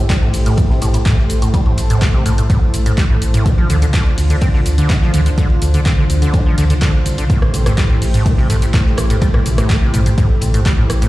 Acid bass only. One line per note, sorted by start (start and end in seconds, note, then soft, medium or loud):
0.10 0.17 G3 medium
0.22 0.29 A2 medium
0.46 0.59 A2 loud
0.58 0.65 C4 medium
0.70 0.80 C3 medium
0.82 0.89 A2 loud
0.94 0.98 A2 medium
1.06 1.16 A2 loud
1.42 1.49 A2 medium
1.54 1.61 G3 medium
1.66 1.73 A2 medium
1.90 2.03 A2 loud
2.02 2.09 C4 medium
2.14 2.24 C3 medium
2.26 2.33 A2 loud
2.38 2.42 A2 medium
2.50 2.60 A2 loud
2.86 2.93 A2 medium
2.98 3.05 G3 medium
3.10 3.17 A2 medium
3.34 3.47 A2 loud
3.46 3.53 F4 medium
3.58 3.68 F3 medium
3.70 3.77 D3 loud
3.82 3.86 D3 medium
3.94 4.04 D3 loud
4.30 4.37 D3 medium
4.42 4.49 C4 medium
4.54 4.61 D3 medium
4.78 4.91 D3 loud
4.90 4.97 F4 medium
5.02 5.12 F3 medium
5.14 5.21 D3 loud
5.26 5.30 D3 medium
5.38 5.48 D3 loud
5.74 5.81 D3 medium
5.86 5.93 C4 medium
5.98 6.05 D3 medium
6.22 6.35 D3 loud
6.34 6.41 F4 medium
6.46 6.56 F3 medium
6.58 6.65 D3 loud
6.70 6.74 D3 medium
6.82 6.92 D3 loud
7.18 7.24 D3 medium
7.30 7.40 A2 loud
7.66 7.73 A2 medium
7.78 7.85 G3 medium
7.90 7.97 A2 medium
8.14 8.27 A2 loud
8.26 8.33 C4 medium
8.38 8.48 C3 medium
8.50 8.57 A2 loud
8.62 8.66 A2 medium
8.74 8.84 A2 loud
9.10 9.17 A2 medium
9.22 9.29 G3 medium
9.34 9.41 A2 medium
9.58 9.71 A2 loud
9.70 9.77 C4 medium
9.82 9.92 C3 medium
9.94 10.01 A2 loud
10.06 10.10 A2 medium
10.18 10.28 A2 loud
10.54 10.61 A2 medium
10.66 10.73 G3 medium
10.78 10.85 A2 medium
11.02 11.09 A2 loud